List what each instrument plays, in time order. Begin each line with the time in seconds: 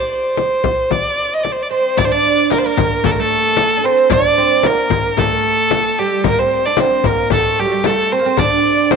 Already playing: violin C5
0.11 violin C5
0.37 frame drum
0.64 frame drum
0.91 violin D5, frame drum
1.34 violin D#5
1.44 violin D5, frame drum
1.52 violin C5
1.63 violin D5
1.71 oud C4, violin C5
1.97 oud D4, violin D5, riq, darbuka dum, frame drum
2.05 violin C5
2.11 oud D4, violin D5, darbuka ka
2.24 riq
2.50 oud A#3, violin A#4, riq, darbuka tek, frame drum
2.59 violin C5
2.66 oud A#3, violin A#4
2.77 riq, darbuka dum, frame drum
3.04 oud A3, violin A4, riq, darbuka dum, frame drum
3.12 violin A#4
3.18 oud A3, violin A4, darbuka ka
3.44 riq
3.57 riq, darbuka tek, frame drum
3.77 oud D4
3.84 oud C4, violin C5
3.97 riq
4.10 oud D4, violin D5, riq, frame drum, darbuka dum
4.24 darbuka ka
4.37 oud C4, riq
4.63 oud A#3, violin A#4, riq, darbuka tek, frame drum
4.90 riq, darbuka dum, frame drum
5.17 oud A3, violin A4, riq, darbuka dum, frame drum
5.31 darbuka ka
5.71 riq, darbuka tek, frame drum
5.99 oud G3, violin G4
6.11 riq
6.24 oud A#3, violin A#4, riq, frame drum, darbuka dum
6.38 oud C4, violin C5, darbuka ka
6.51 riq
6.66 oud D4, violin D5
6.77 oud C4, violin C5, riq, darbuka tek, frame drum
7.04 oud A#3, violin A#4, riq, frame drum, darbuka dum
7.30 oud A3, violin A4, riq, frame drum, darbuka dum
7.45 darbuka ka
7.59 oud G3, violin G4
7.65 oud F#3
7.72 oud G3, riq
7.84 oud A3, violin A4, riq, darbuka tek, frame drum
8.12 oud C4, violin C5
8.19 oud A#3
8.25 oud C4, riq
8.37 oud D4, violin D5, riq, frame drum, darbuka dum
8.78 riq, darbuka ka
8.91 oud C4, violin C5, riq, darbuka tek, frame drum